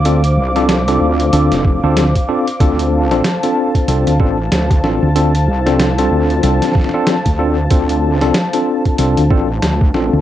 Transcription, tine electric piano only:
X:1
M:4/4
L:1/16
Q:"Swing 16ths" 1/4=94
K:Dm
V:1 name="Tine electric piano"
[CDFA] z2 [CDFA] z [CDFA]3 [CDFA]3 [CDFA] z2 [CDFA] z | [CDFA]3 [CDFA] z [CDFA]3 [CDFA] z [CDFA] z3 [CDFA] z | [CDFA] z2 [CDFA] z [CDFA]3 [CDFA]3 [CDFA] z2 [CDFA] z | [CDFA]3 [CDFA] z [CDFA]3 [CDFA] z [CDFA] z3 [CDFA] z |]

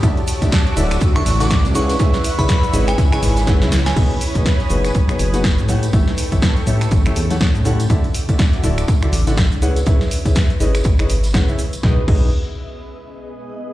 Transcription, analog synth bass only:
X:1
M:4/4
L:1/16
Q:"Swing 16ths" 1/4=122
K:C#dor
V:1 name="Analog synth bass" clef=bass
=D,, z2 D,, z2 =D,,,2 D,,2 =A,,,3 C,,3 | C,, z2 C,, z2 G,,,2 C,,2 G,,,3 C,,3 | B,,, z2 B,,, z2 F,,,2 B,,,2 F,,,3 =A,,3 | =A,,, z2 A,,, z2 =A,,2 A,,,2 E,,3 A,,3 |
=D,, z2 D,, z2 =D,,,2 D,,2 =A,,,3 C,,3 | C,, z2 C,, z2 G,,,2 G,,,2 G,,,3 C,, z2 | B,,, z B,,,2 z12 |]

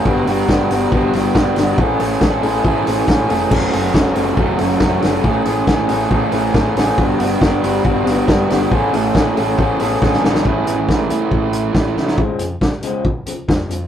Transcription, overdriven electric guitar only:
X:1
M:4/4
L:1/8
Q:1/4=138
K:A
V:1 name="Overdriven electric guitar"
[=G,,D,=G,B,D=G] [G,,D,G,B,DG] [G,,D,G,B,DG] [G,,D,G,B,DG] [G,,D,G,B,DG] [G,,D,G,B,DG] [G,,D,G,B,DG] [G,,D,G,B,DG] | [A,,E,A,CA] [A,,E,A,CA] [A,,E,A,CA] [A,,E,A,CA] [A,,E,A,CA] [A,,E,A,CA] [A,,E,A,CA] [A,,E,A,CA] | [F,,C,F,A,CA] [F,,C,F,A,CA] [F,,C,F,A,CA] [F,,C,F,A,CA] [F,,C,F,A,CA] [F,,C,F,A,CA] [F,,C,F,A,CA] [F,,C,F,A,CA] | [A,,E,A,CA] [A,,E,A,CA] [A,,E,A,CA] [A,,E,A,CA] [A,,E,A,CA] [A,,E,A,CA] [A,,E,A,CA] [A,,E,A,CA] |
[=G,,D,=G,B,D=G] [G,,D,G,B,DG] [G,,D,G,B,DG] [G,,D,G,B,DG] [G,,D,G,B,DG] [G,,D,G,B,DG] [G,,D,G,B,DG] [G,,D,G,B,DG] | [A,,E,A,CA] [A,,E,A,CA] [A,,E,A,CA] [A,,E,A,CA] [A,,E,A,CA] [A,,E,A,CA] [A,,E,A,CA] [A,,E,A,CA] | [A,,E,A,CE]3 [A,,E,A,CE]3 [A,,E,A,CE]2 | z8 |]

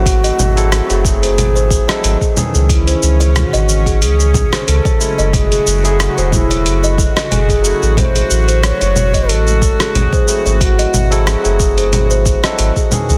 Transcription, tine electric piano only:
X:1
M:4/4
L:1/16
Q:"Swing 16ths" 1/4=91
K:none
V:1 name="Tine electric piano"
[^F,A,^B,E]3 [F,B,EA]2 [F,A,B,E]6 [F,B,EA]2 z [^D,E,^C^G]2- | [^D,E,^C^G]12- [D,E,CG]2 [^F,^G,A,E]2- | [^F,^G,A,E]3 [F,A,E^G]2 [F,A,EG]6 z3 [F,A,^CE]2- | [^F,A,^CE]12- [F,A,CE]2 [F,A,^B,E]2- |
[^F,A,^B,E]3 [F,B,EA]2 [F,A,B,E]6 [F,B,EA]2 z [^D,E,^C^G]2 |]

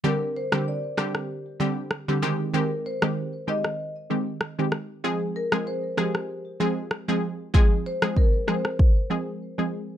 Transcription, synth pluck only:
X:1
M:4/4
L:1/16
Q:"Swing 16ths" 1/4=96
K:Cm
V:1 name="Synth pluck"
[D,G,CG] z2 [D,G,CG] z2 [D,G,CG] z3 [D,G,CG] z2 [D,G,CG] [E,A,CG]2 | [E,A,CG] z2 [E,A,CG] z2 [E,A,CG] z3 [E,A,CG] z2 [E,A,CG] z2 | [F,A,CA] z2 [F,A,CA] z2 [F,A,CA] z3 [F,A,CA] z2 [F,A,CA] z2 | [F,A,CA] z2 [F,A,CA] z2 [F,A,CA] z3 [F,A,CA] z2 [F,A,CA] z2 |]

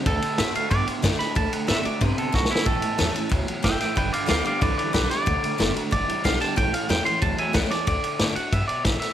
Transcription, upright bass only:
X:1
M:4/4
L:1/8
Q:1/4=184
K:D
V:1 name="Upright bass" clef=bass
D,, z A,, z G,, z F,, z | D,, z A,, z G,, z B,,, z | A,,, z E,, z D,, z F,,, z | G,,, z D,, z =C,, z B,,, z |
D,, z F,,, z G,,, z B,,, z | A,,, z E,, z D,, z C,, z | D,, z A,, z G,, z A,,, z |]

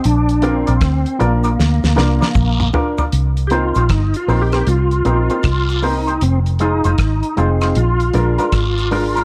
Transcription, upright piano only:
X:1
M:4/4
L:1/16
Q:"Swing 16ths" 1/4=78
K:Cm
V:1 name="Upright piano"
z2 [DFB] z3 [DFB] z3 [DFB] z3 [DFB] z | z2 [CEB] z3 [CEB] [CEB] z2 [CEB] [CEB] z2 [CEB] z | z2 [EFA] z3 [EFA] [EFA] z2 [DAB] [DAB] z2 [DAB] z |]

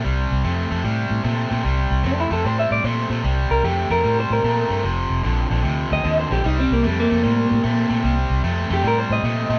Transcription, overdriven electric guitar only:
X:1
M:4/4
L:1/8
Q:"Swing" 1/4=150
K:F
V:1 name="Overdriven electric guitar" clef=bass
[C,G,]2 [C,A,] [C,A,] [C,G,]2 [C,A,] [C,A,] | [C,G,]2 [C,A,] [C,A,] [C,G,]2 [C,A,] [C,A,] | [C,G,]2 [C,A,] [C,A,] [C,G,]2 [C,A,] [C,A,] | [F,,C,]2 [F,,D,] [F,,D,] [F,,C,]2 [F,,D,] [F,,D,] |
[C,G,]2 [C,A,] [C,A,] [C,G,]2 [C,A,] [C,A,] | [C,G,]2 [C,A,] [C,A,] [C,G,]2 [C,A,] [C,A,] |]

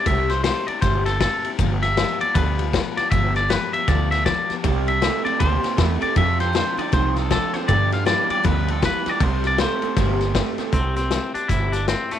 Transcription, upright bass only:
X:1
M:4/4
L:1/8
Q:"Swing" 1/4=157
K:C
V:1 name="Upright bass" clef=bass
C,,3 z G,,,3 z | G,,,3 z D,,3 z | G,,,3 z D,,3 z | C,,3 z D,, z E,, z |
F,,3 z C,,3 z | G,,3 z D,,3 z | C,,3 z G,,,3 z | C,,3 z G,,,3 z |]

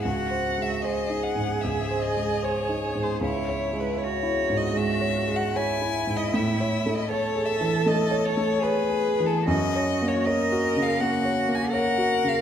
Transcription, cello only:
X:1
M:4/4
L:1/8
Q:1/4=77
K:Alyd
V:1 name="Cello"
F2 G6 | E2 F4 E2- | E2 A4 G2 | [K:Gblyd] G2 B2 G2 B2 |]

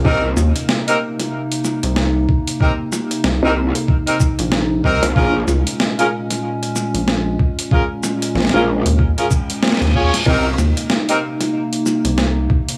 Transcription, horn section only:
X:1
M:4/4
L:1/16
Q:"Swing 16ths" 1/4=94
K:Cphr
V:1 name="Horn section"
[CEGB] z4 [CEGB] z8 z2 | [CEGB] z4 [CEGB] z3 [CEGB] z4 [CEGB] z | [DFAB] z4 [DFAB] z8 z2 | [DFAB] z4 [DFAB] z3 [DFAB] z4 [DFAd] z |
[CEGB] z4 [CEGB] z8 z2 |]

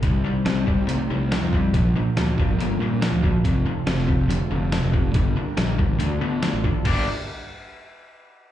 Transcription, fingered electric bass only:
X:1
M:4/4
L:1/16
Q:1/4=141
K:Gm
V:1 name="Fingered electric bass" clef=bass
C,,2 z2 C,,2 z C,,2 z C,,3 F,,3 | B,,,2 z2 D,,2 z G,,,3 B,,3 D,,2 z | F,,,2 z2 F,,,2 z F,,,2 z F,,,3 F,,,3 | G,,,2 z2 B,,,2 z A,,, D,,2 D,3 A,,,2 z |
G,,,2 z12 z2 |]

